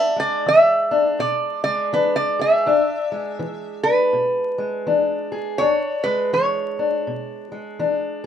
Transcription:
0, 0, Header, 1, 3, 480
1, 0, Start_track
1, 0, Tempo, 736196
1, 1728, Time_signature, 4, 2, 24, 8
1, 5387, End_track
2, 0, Start_track
2, 0, Title_t, "Resonator guitar played with a steel bar"
2, 0, Program_c, 0, 25
2, 0, Note_on_c, 0, 76, 92
2, 123, Note_off_c, 0, 76, 0
2, 129, Note_on_c, 0, 74, 94
2, 308, Note_off_c, 0, 74, 0
2, 316, Note_on_c, 0, 76, 89
2, 780, Note_off_c, 0, 76, 0
2, 782, Note_on_c, 0, 74, 90
2, 1060, Note_off_c, 0, 74, 0
2, 1068, Note_on_c, 0, 74, 91
2, 1258, Note_off_c, 0, 74, 0
2, 1262, Note_on_c, 0, 71, 75
2, 1404, Note_off_c, 0, 71, 0
2, 1407, Note_on_c, 0, 74, 86
2, 1571, Note_off_c, 0, 74, 0
2, 1574, Note_on_c, 0, 76, 81
2, 2476, Note_off_c, 0, 76, 0
2, 2500, Note_on_c, 0, 71, 84
2, 3640, Note_on_c, 0, 73, 91
2, 3682, Note_off_c, 0, 71, 0
2, 3935, Note_on_c, 0, 71, 80
2, 3944, Note_off_c, 0, 73, 0
2, 4112, Note_off_c, 0, 71, 0
2, 4131, Note_on_c, 0, 73, 74
2, 5063, Note_off_c, 0, 73, 0
2, 5387, End_track
3, 0, Start_track
3, 0, Title_t, "Steel-string acoustic guitar"
3, 0, Program_c, 1, 25
3, 0, Note_on_c, 1, 40, 75
3, 0, Note_on_c, 1, 62, 57
3, 106, Note_on_c, 1, 56, 54
3, 253, Note_off_c, 1, 40, 0
3, 300, Note_on_c, 1, 52, 61
3, 584, Note_off_c, 1, 62, 0
3, 595, Note_on_c, 1, 62, 55
3, 737, Note_off_c, 1, 52, 0
3, 776, Note_on_c, 1, 47, 66
3, 1075, Note_off_c, 1, 56, 0
3, 1077, Note_on_c, 1, 56, 58
3, 1215, Note_off_c, 1, 47, 0
3, 1256, Note_on_c, 1, 52, 65
3, 1259, Note_off_c, 1, 62, 0
3, 1261, Note_on_c, 1, 62, 57
3, 1560, Note_on_c, 1, 68, 66
3, 1694, Note_off_c, 1, 52, 0
3, 1735, Note_on_c, 1, 40, 81
3, 1737, Note_off_c, 1, 62, 0
3, 1739, Note_on_c, 1, 62, 67
3, 1759, Note_off_c, 1, 56, 0
3, 1759, Note_off_c, 1, 68, 0
3, 2033, Note_on_c, 1, 56, 53
3, 2174, Note_off_c, 1, 40, 0
3, 2213, Note_on_c, 1, 52, 64
3, 2507, Note_off_c, 1, 62, 0
3, 2510, Note_on_c, 1, 62, 53
3, 2652, Note_off_c, 1, 52, 0
3, 2692, Note_on_c, 1, 47, 62
3, 2985, Note_off_c, 1, 56, 0
3, 2988, Note_on_c, 1, 56, 57
3, 3132, Note_off_c, 1, 47, 0
3, 3172, Note_on_c, 1, 52, 61
3, 3173, Note_off_c, 1, 62, 0
3, 3175, Note_on_c, 1, 62, 56
3, 3468, Note_on_c, 1, 68, 61
3, 3612, Note_off_c, 1, 52, 0
3, 3651, Note_on_c, 1, 40, 86
3, 3652, Note_off_c, 1, 62, 0
3, 3654, Note_on_c, 1, 62, 67
3, 3674, Note_off_c, 1, 56, 0
3, 3674, Note_off_c, 1, 68, 0
3, 3946, Note_on_c, 1, 56, 60
3, 4091, Note_off_c, 1, 40, 0
3, 4127, Note_on_c, 1, 52, 71
3, 4425, Note_off_c, 1, 62, 0
3, 4427, Note_on_c, 1, 62, 49
3, 4569, Note_off_c, 1, 52, 0
3, 4611, Note_on_c, 1, 47, 61
3, 4893, Note_off_c, 1, 56, 0
3, 4901, Note_on_c, 1, 56, 53
3, 5051, Note_off_c, 1, 47, 0
3, 5074, Note_off_c, 1, 62, 0
3, 5081, Note_on_c, 1, 52, 61
3, 5083, Note_on_c, 1, 62, 61
3, 5387, Note_off_c, 1, 52, 0
3, 5387, Note_off_c, 1, 56, 0
3, 5387, Note_off_c, 1, 62, 0
3, 5387, End_track
0, 0, End_of_file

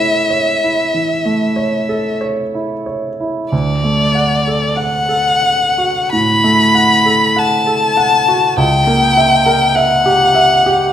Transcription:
0, 0, Header, 1, 3, 480
1, 0, Start_track
1, 0, Key_signature, 2, "major"
1, 0, Tempo, 1273885
1, 1327, Time_signature, 4, 2, 24, 8
1, 1801, Tempo, 1366743
1, 2281, Tempo, 1237113
1, 2761, Tempo, 1195219
1, 4184, End_track
2, 0, Start_track
2, 0, Title_t, "Violin"
2, 0, Program_c, 0, 40
2, 0, Note_on_c, 0, 76, 59
2, 833, Note_off_c, 0, 76, 0
2, 1325, Note_on_c, 0, 74, 59
2, 1793, Note_on_c, 0, 78, 70
2, 1799, Note_off_c, 0, 74, 0
2, 2269, Note_off_c, 0, 78, 0
2, 2271, Note_on_c, 0, 83, 80
2, 2762, Note_on_c, 0, 81, 68
2, 2768, Note_off_c, 0, 83, 0
2, 3240, Note_off_c, 0, 81, 0
2, 3242, Note_on_c, 0, 79, 75
2, 3712, Note_on_c, 0, 78, 86
2, 3718, Note_off_c, 0, 79, 0
2, 4184, Note_off_c, 0, 78, 0
2, 4184, End_track
3, 0, Start_track
3, 0, Title_t, "Grand piano"
3, 0, Program_c, 1, 0
3, 0, Control_c, 1, 64, 127
3, 0, Note_on_c, 1, 45, 44
3, 0, Note_on_c, 1, 57, 33
3, 0, Note_on_c, 1, 64, 32
3, 0, Note_on_c, 1, 69, 36
3, 0, Note_on_c, 1, 73, 38
3, 73, Note_off_c, 1, 73, 0
3, 113, Note_on_c, 1, 73, 33
3, 190, Note_off_c, 1, 64, 0
3, 240, Note_on_c, 1, 64, 35
3, 309, Note_off_c, 1, 73, 0
3, 346, Note_off_c, 1, 45, 0
3, 355, Note_on_c, 1, 52, 33
3, 431, Note_off_c, 1, 64, 0
3, 472, Note_off_c, 1, 57, 0
3, 472, Note_on_c, 1, 57, 33
3, 548, Note_off_c, 1, 52, 0
3, 588, Note_on_c, 1, 73, 36
3, 666, Note_off_c, 1, 57, 0
3, 712, Note_off_c, 1, 69, 0
3, 712, Note_on_c, 1, 69, 37
3, 784, Note_off_c, 1, 73, 0
3, 832, Note_on_c, 1, 73, 37
3, 907, Note_off_c, 1, 69, 0
3, 959, Note_on_c, 1, 64, 33
3, 1030, Note_off_c, 1, 73, 0
3, 1078, Note_on_c, 1, 73, 35
3, 1156, Note_off_c, 1, 64, 0
3, 1207, Note_on_c, 1, 64, 35
3, 1277, Note_off_c, 1, 73, 0
3, 1327, Note_on_c, 1, 38, 41
3, 1328, Note_off_c, 1, 64, 0
3, 1332, Control_c, 1, 64, 0
3, 1401, Control_c, 1, 64, 127
3, 1446, Note_on_c, 1, 57, 33
3, 1563, Note_on_c, 1, 78, 37
3, 1634, Note_off_c, 1, 57, 0
3, 1686, Note_on_c, 1, 69, 36
3, 1752, Note_off_c, 1, 78, 0
3, 1797, Note_on_c, 1, 78, 42
3, 1870, Note_off_c, 1, 69, 0
3, 1909, Note_on_c, 1, 69, 36
3, 1985, Note_off_c, 1, 78, 0
3, 2029, Note_on_c, 1, 78, 37
3, 2109, Note_off_c, 1, 69, 0
3, 2153, Note_on_c, 1, 66, 35
3, 2229, Note_off_c, 1, 78, 0
3, 2266, Note_off_c, 1, 38, 0
3, 2274, Note_on_c, 1, 45, 36
3, 2352, Note_off_c, 1, 66, 0
3, 2395, Note_on_c, 1, 57, 39
3, 2475, Note_off_c, 1, 45, 0
3, 2513, Note_on_c, 1, 78, 40
3, 2590, Note_off_c, 1, 57, 0
3, 2635, Note_on_c, 1, 69, 42
3, 2707, Note_off_c, 1, 78, 0
3, 2753, Note_on_c, 1, 78, 46
3, 2829, Note_off_c, 1, 69, 0
3, 2876, Note_on_c, 1, 69, 40
3, 2951, Note_off_c, 1, 78, 0
3, 2997, Note_on_c, 1, 78, 50
3, 3073, Note_off_c, 1, 69, 0
3, 3123, Note_on_c, 1, 66, 44
3, 3192, Note_off_c, 1, 78, 0
3, 3238, Note_on_c, 1, 37, 52
3, 3242, Note_off_c, 1, 66, 0
3, 3250, Control_c, 1, 64, 0
3, 3326, Control_c, 1, 64, 127
3, 3357, Note_on_c, 1, 58, 46
3, 3479, Note_on_c, 1, 76, 45
3, 3549, Note_off_c, 1, 58, 0
3, 3596, Note_on_c, 1, 70, 46
3, 3670, Note_off_c, 1, 76, 0
3, 3714, Note_on_c, 1, 76, 51
3, 3790, Note_off_c, 1, 70, 0
3, 3835, Note_on_c, 1, 67, 49
3, 3910, Note_off_c, 1, 76, 0
3, 3951, Note_on_c, 1, 76, 50
3, 4031, Note_off_c, 1, 67, 0
3, 4078, Note_on_c, 1, 67, 47
3, 4149, Note_off_c, 1, 76, 0
3, 4183, Note_off_c, 1, 37, 0
3, 4184, Note_off_c, 1, 67, 0
3, 4184, End_track
0, 0, End_of_file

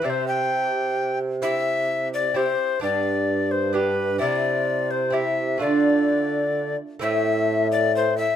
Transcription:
0, 0, Header, 1, 4, 480
1, 0, Start_track
1, 0, Tempo, 465116
1, 52, Time_signature, 3, 2, 24, 8
1, 8626, End_track
2, 0, Start_track
2, 0, Title_t, "Recorder"
2, 0, Program_c, 0, 74
2, 51, Note_on_c, 0, 74, 83
2, 101, Note_on_c, 0, 72, 90
2, 111, Note_off_c, 0, 74, 0
2, 281, Note_off_c, 0, 72, 0
2, 287, Note_on_c, 0, 79, 84
2, 1227, Note_off_c, 0, 79, 0
2, 1469, Note_on_c, 0, 76, 103
2, 2154, Note_off_c, 0, 76, 0
2, 2207, Note_on_c, 0, 74, 88
2, 2443, Note_on_c, 0, 72, 88
2, 2458, Note_off_c, 0, 74, 0
2, 2913, Note_off_c, 0, 72, 0
2, 2919, Note_on_c, 0, 74, 96
2, 3627, Note_on_c, 0, 72, 86
2, 3642, Note_off_c, 0, 74, 0
2, 3858, Note_on_c, 0, 71, 78
2, 3874, Note_off_c, 0, 72, 0
2, 4328, Note_off_c, 0, 71, 0
2, 4334, Note_on_c, 0, 74, 103
2, 5064, Note_on_c, 0, 72, 79
2, 5079, Note_off_c, 0, 74, 0
2, 5304, Note_on_c, 0, 76, 88
2, 5319, Note_off_c, 0, 72, 0
2, 5786, Note_off_c, 0, 76, 0
2, 5792, Note_on_c, 0, 74, 83
2, 6980, Note_off_c, 0, 74, 0
2, 7241, Note_on_c, 0, 76, 106
2, 7924, Note_off_c, 0, 76, 0
2, 7965, Note_on_c, 0, 74, 96
2, 8202, Note_off_c, 0, 74, 0
2, 8218, Note_on_c, 0, 72, 106
2, 8431, Note_off_c, 0, 72, 0
2, 8437, Note_on_c, 0, 76, 102
2, 8626, Note_off_c, 0, 76, 0
2, 8626, End_track
3, 0, Start_track
3, 0, Title_t, "Lute"
3, 0, Program_c, 1, 24
3, 18, Note_on_c, 1, 60, 51
3, 30, Note_on_c, 1, 64, 46
3, 43, Note_on_c, 1, 67, 47
3, 56, Note_on_c, 1, 48, 54
3, 1430, Note_off_c, 1, 60, 0
3, 1436, Note_off_c, 1, 64, 0
3, 1443, Note_off_c, 1, 67, 0
3, 1462, Note_on_c, 1, 60, 50
3, 1470, Note_on_c, 1, 64, 49
3, 1487, Note_on_c, 1, 67, 48
3, 2402, Note_off_c, 1, 60, 0
3, 2406, Note_off_c, 1, 64, 0
3, 2415, Note_off_c, 1, 67, 0
3, 2416, Note_on_c, 1, 60, 51
3, 2426, Note_on_c, 1, 64, 51
3, 2437, Note_on_c, 1, 67, 51
3, 2595, Note_off_c, 1, 48, 0
3, 2882, Note_off_c, 1, 60, 0
3, 2887, Note_on_c, 1, 59, 48
3, 2895, Note_off_c, 1, 64, 0
3, 2899, Note_on_c, 1, 62, 52
3, 2903, Note_off_c, 1, 67, 0
3, 2914, Note_on_c, 1, 67, 50
3, 2924, Note_on_c, 1, 43, 54
3, 3826, Note_off_c, 1, 59, 0
3, 3832, Note_off_c, 1, 62, 0
3, 3840, Note_off_c, 1, 67, 0
3, 3846, Note_on_c, 1, 59, 49
3, 3857, Note_on_c, 1, 62, 51
3, 3868, Note_on_c, 1, 67, 53
3, 4310, Note_off_c, 1, 43, 0
3, 4312, Note_off_c, 1, 59, 0
3, 4316, Note_on_c, 1, 60, 46
3, 4323, Note_off_c, 1, 62, 0
3, 4327, Note_off_c, 1, 67, 0
3, 4327, Note_on_c, 1, 64, 48
3, 4339, Note_on_c, 1, 67, 46
3, 4352, Note_on_c, 1, 48, 57
3, 5256, Note_off_c, 1, 60, 0
3, 5268, Note_on_c, 1, 60, 46
3, 5269, Note_off_c, 1, 64, 0
3, 5276, Note_off_c, 1, 67, 0
3, 5287, Note_on_c, 1, 64, 47
3, 5296, Note_on_c, 1, 67, 47
3, 5754, Note_off_c, 1, 48, 0
3, 5756, Note_on_c, 1, 57, 48
3, 5758, Note_off_c, 1, 60, 0
3, 5768, Note_off_c, 1, 64, 0
3, 5771, Note_on_c, 1, 62, 46
3, 5772, Note_off_c, 1, 67, 0
3, 5782, Note_on_c, 1, 65, 44
3, 5800, Note_on_c, 1, 50, 50
3, 6967, Note_off_c, 1, 50, 0
3, 7186, Note_off_c, 1, 57, 0
3, 7194, Note_off_c, 1, 62, 0
3, 7199, Note_off_c, 1, 65, 0
3, 7218, Note_on_c, 1, 57, 57
3, 7233, Note_on_c, 1, 60, 56
3, 7240, Note_on_c, 1, 64, 59
3, 7251, Note_on_c, 1, 45, 61
3, 8626, Note_off_c, 1, 45, 0
3, 8626, Note_off_c, 1, 57, 0
3, 8626, Note_off_c, 1, 60, 0
3, 8626, Note_off_c, 1, 64, 0
3, 8626, End_track
4, 0, Start_track
4, 0, Title_t, "Bassoon"
4, 0, Program_c, 2, 70
4, 53, Note_on_c, 2, 48, 61
4, 2594, Note_off_c, 2, 48, 0
4, 2921, Note_on_c, 2, 43, 63
4, 4309, Note_off_c, 2, 43, 0
4, 4352, Note_on_c, 2, 48, 63
4, 5754, Note_off_c, 2, 48, 0
4, 5792, Note_on_c, 2, 50, 63
4, 6980, Note_off_c, 2, 50, 0
4, 7245, Note_on_c, 2, 45, 78
4, 8626, Note_off_c, 2, 45, 0
4, 8626, End_track
0, 0, End_of_file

